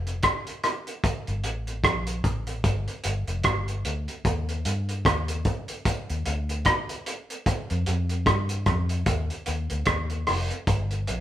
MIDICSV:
0, 0, Header, 1, 3, 480
1, 0, Start_track
1, 0, Tempo, 803643
1, 620, Time_signature, 4, 2, 24, 8
1, 6693, End_track
2, 0, Start_track
2, 0, Title_t, "Fingered electric bass"
2, 0, Program_c, 0, 33
2, 0, Note_on_c, 0, 29, 77
2, 128, Note_off_c, 0, 29, 0
2, 765, Note_on_c, 0, 31, 90
2, 869, Note_off_c, 0, 31, 0
2, 869, Note_on_c, 0, 33, 96
2, 1087, Note_off_c, 0, 33, 0
2, 1101, Note_on_c, 0, 34, 98
2, 1323, Note_off_c, 0, 34, 0
2, 1343, Note_on_c, 0, 33, 75
2, 1564, Note_off_c, 0, 33, 0
2, 1581, Note_on_c, 0, 31, 85
2, 1709, Note_off_c, 0, 31, 0
2, 1823, Note_on_c, 0, 31, 86
2, 1950, Note_off_c, 0, 31, 0
2, 1959, Note_on_c, 0, 29, 71
2, 2052, Note_off_c, 0, 29, 0
2, 2061, Note_on_c, 0, 31, 86
2, 2282, Note_off_c, 0, 31, 0
2, 2301, Note_on_c, 0, 38, 78
2, 2429, Note_off_c, 0, 38, 0
2, 2542, Note_on_c, 0, 39, 102
2, 2763, Note_off_c, 0, 39, 0
2, 2779, Note_on_c, 0, 43, 85
2, 3001, Note_off_c, 0, 43, 0
2, 3021, Note_on_c, 0, 39, 85
2, 3242, Note_off_c, 0, 39, 0
2, 3645, Note_on_c, 0, 39, 82
2, 3735, Note_off_c, 0, 39, 0
2, 3744, Note_on_c, 0, 38, 90
2, 3964, Note_off_c, 0, 38, 0
2, 4604, Note_on_c, 0, 41, 90
2, 4695, Note_off_c, 0, 41, 0
2, 4705, Note_on_c, 0, 41, 96
2, 4924, Note_off_c, 0, 41, 0
2, 4939, Note_on_c, 0, 43, 81
2, 5161, Note_off_c, 0, 43, 0
2, 5180, Note_on_c, 0, 41, 92
2, 5401, Note_off_c, 0, 41, 0
2, 5418, Note_on_c, 0, 39, 91
2, 5546, Note_off_c, 0, 39, 0
2, 5661, Note_on_c, 0, 39, 80
2, 5788, Note_off_c, 0, 39, 0
2, 5802, Note_on_c, 0, 38, 74
2, 5893, Note_off_c, 0, 38, 0
2, 5897, Note_on_c, 0, 39, 89
2, 6119, Note_off_c, 0, 39, 0
2, 6145, Note_on_c, 0, 29, 78
2, 6270, Note_off_c, 0, 29, 0
2, 6380, Note_on_c, 0, 31, 106
2, 6601, Note_off_c, 0, 31, 0
2, 6624, Note_on_c, 0, 34, 81
2, 6693, Note_off_c, 0, 34, 0
2, 6693, End_track
3, 0, Start_track
3, 0, Title_t, "Drums"
3, 40, Note_on_c, 9, 42, 44
3, 100, Note_off_c, 9, 42, 0
3, 135, Note_on_c, 9, 42, 80
3, 140, Note_on_c, 9, 36, 101
3, 143, Note_on_c, 9, 37, 98
3, 195, Note_off_c, 9, 42, 0
3, 200, Note_off_c, 9, 36, 0
3, 203, Note_off_c, 9, 37, 0
3, 279, Note_on_c, 9, 42, 52
3, 339, Note_off_c, 9, 42, 0
3, 380, Note_on_c, 9, 42, 74
3, 381, Note_on_c, 9, 37, 65
3, 439, Note_off_c, 9, 42, 0
3, 441, Note_off_c, 9, 37, 0
3, 520, Note_on_c, 9, 42, 49
3, 580, Note_off_c, 9, 42, 0
3, 619, Note_on_c, 9, 36, 115
3, 621, Note_on_c, 9, 42, 95
3, 679, Note_off_c, 9, 36, 0
3, 681, Note_off_c, 9, 42, 0
3, 761, Note_on_c, 9, 42, 46
3, 821, Note_off_c, 9, 42, 0
3, 858, Note_on_c, 9, 42, 81
3, 918, Note_off_c, 9, 42, 0
3, 999, Note_on_c, 9, 42, 41
3, 1059, Note_off_c, 9, 42, 0
3, 1097, Note_on_c, 9, 36, 99
3, 1099, Note_on_c, 9, 42, 74
3, 1102, Note_on_c, 9, 37, 101
3, 1157, Note_off_c, 9, 36, 0
3, 1159, Note_off_c, 9, 42, 0
3, 1162, Note_off_c, 9, 37, 0
3, 1235, Note_on_c, 9, 42, 57
3, 1295, Note_off_c, 9, 42, 0
3, 1338, Note_on_c, 9, 36, 96
3, 1339, Note_on_c, 9, 42, 58
3, 1398, Note_off_c, 9, 36, 0
3, 1399, Note_off_c, 9, 42, 0
3, 1475, Note_on_c, 9, 42, 56
3, 1534, Note_off_c, 9, 42, 0
3, 1577, Note_on_c, 9, 36, 109
3, 1577, Note_on_c, 9, 42, 97
3, 1636, Note_off_c, 9, 36, 0
3, 1636, Note_off_c, 9, 42, 0
3, 1719, Note_on_c, 9, 42, 46
3, 1778, Note_off_c, 9, 42, 0
3, 1814, Note_on_c, 9, 42, 80
3, 1873, Note_off_c, 9, 42, 0
3, 1956, Note_on_c, 9, 42, 44
3, 2016, Note_off_c, 9, 42, 0
3, 2052, Note_on_c, 9, 42, 82
3, 2057, Note_on_c, 9, 36, 92
3, 2060, Note_on_c, 9, 37, 118
3, 2111, Note_off_c, 9, 42, 0
3, 2117, Note_off_c, 9, 36, 0
3, 2119, Note_off_c, 9, 37, 0
3, 2198, Note_on_c, 9, 42, 53
3, 2258, Note_off_c, 9, 42, 0
3, 2299, Note_on_c, 9, 42, 73
3, 2358, Note_off_c, 9, 42, 0
3, 2437, Note_on_c, 9, 42, 48
3, 2497, Note_off_c, 9, 42, 0
3, 2538, Note_on_c, 9, 36, 105
3, 2539, Note_on_c, 9, 42, 96
3, 2598, Note_off_c, 9, 36, 0
3, 2598, Note_off_c, 9, 42, 0
3, 2680, Note_on_c, 9, 42, 51
3, 2740, Note_off_c, 9, 42, 0
3, 2778, Note_on_c, 9, 42, 86
3, 2838, Note_off_c, 9, 42, 0
3, 2919, Note_on_c, 9, 42, 46
3, 2979, Note_off_c, 9, 42, 0
3, 3017, Note_on_c, 9, 36, 112
3, 3020, Note_on_c, 9, 42, 72
3, 3023, Note_on_c, 9, 37, 97
3, 3077, Note_off_c, 9, 36, 0
3, 3080, Note_off_c, 9, 42, 0
3, 3083, Note_off_c, 9, 37, 0
3, 3156, Note_on_c, 9, 42, 55
3, 3215, Note_off_c, 9, 42, 0
3, 3255, Note_on_c, 9, 42, 57
3, 3256, Note_on_c, 9, 36, 94
3, 3314, Note_off_c, 9, 42, 0
3, 3316, Note_off_c, 9, 36, 0
3, 3393, Note_on_c, 9, 42, 54
3, 3453, Note_off_c, 9, 42, 0
3, 3497, Note_on_c, 9, 36, 102
3, 3497, Note_on_c, 9, 42, 98
3, 3556, Note_off_c, 9, 36, 0
3, 3556, Note_off_c, 9, 42, 0
3, 3641, Note_on_c, 9, 42, 43
3, 3700, Note_off_c, 9, 42, 0
3, 3736, Note_on_c, 9, 42, 71
3, 3796, Note_off_c, 9, 42, 0
3, 3878, Note_on_c, 9, 42, 47
3, 3938, Note_off_c, 9, 42, 0
3, 3971, Note_on_c, 9, 42, 78
3, 3976, Note_on_c, 9, 36, 94
3, 3979, Note_on_c, 9, 37, 109
3, 4031, Note_off_c, 9, 42, 0
3, 4036, Note_off_c, 9, 36, 0
3, 4039, Note_off_c, 9, 37, 0
3, 4117, Note_on_c, 9, 42, 50
3, 4177, Note_off_c, 9, 42, 0
3, 4219, Note_on_c, 9, 42, 75
3, 4278, Note_off_c, 9, 42, 0
3, 4361, Note_on_c, 9, 42, 47
3, 4421, Note_off_c, 9, 42, 0
3, 4457, Note_on_c, 9, 36, 113
3, 4458, Note_on_c, 9, 42, 93
3, 4517, Note_off_c, 9, 36, 0
3, 4517, Note_off_c, 9, 42, 0
3, 4599, Note_on_c, 9, 42, 49
3, 4659, Note_off_c, 9, 42, 0
3, 4697, Note_on_c, 9, 42, 79
3, 4756, Note_off_c, 9, 42, 0
3, 4835, Note_on_c, 9, 42, 45
3, 4894, Note_off_c, 9, 42, 0
3, 4934, Note_on_c, 9, 36, 110
3, 4935, Note_on_c, 9, 42, 70
3, 4938, Note_on_c, 9, 37, 95
3, 4994, Note_off_c, 9, 36, 0
3, 4995, Note_off_c, 9, 42, 0
3, 4998, Note_off_c, 9, 37, 0
3, 5072, Note_on_c, 9, 42, 56
3, 5131, Note_off_c, 9, 42, 0
3, 5173, Note_on_c, 9, 42, 56
3, 5174, Note_on_c, 9, 36, 100
3, 5175, Note_on_c, 9, 37, 66
3, 5233, Note_off_c, 9, 42, 0
3, 5234, Note_off_c, 9, 36, 0
3, 5234, Note_off_c, 9, 37, 0
3, 5312, Note_on_c, 9, 42, 56
3, 5371, Note_off_c, 9, 42, 0
3, 5412, Note_on_c, 9, 42, 93
3, 5413, Note_on_c, 9, 36, 103
3, 5472, Note_off_c, 9, 42, 0
3, 5473, Note_off_c, 9, 36, 0
3, 5556, Note_on_c, 9, 42, 45
3, 5615, Note_off_c, 9, 42, 0
3, 5650, Note_on_c, 9, 42, 76
3, 5710, Note_off_c, 9, 42, 0
3, 5793, Note_on_c, 9, 42, 45
3, 5852, Note_off_c, 9, 42, 0
3, 5886, Note_on_c, 9, 42, 77
3, 5893, Note_on_c, 9, 36, 97
3, 5894, Note_on_c, 9, 37, 102
3, 5946, Note_off_c, 9, 42, 0
3, 5953, Note_off_c, 9, 36, 0
3, 5954, Note_off_c, 9, 37, 0
3, 6031, Note_on_c, 9, 42, 54
3, 6091, Note_off_c, 9, 42, 0
3, 6133, Note_on_c, 9, 46, 74
3, 6135, Note_on_c, 9, 37, 66
3, 6193, Note_off_c, 9, 46, 0
3, 6194, Note_off_c, 9, 37, 0
3, 6275, Note_on_c, 9, 42, 50
3, 6335, Note_off_c, 9, 42, 0
3, 6374, Note_on_c, 9, 36, 107
3, 6374, Note_on_c, 9, 42, 91
3, 6434, Note_off_c, 9, 36, 0
3, 6434, Note_off_c, 9, 42, 0
3, 6515, Note_on_c, 9, 42, 44
3, 6575, Note_off_c, 9, 42, 0
3, 6615, Note_on_c, 9, 42, 73
3, 6674, Note_off_c, 9, 42, 0
3, 6693, End_track
0, 0, End_of_file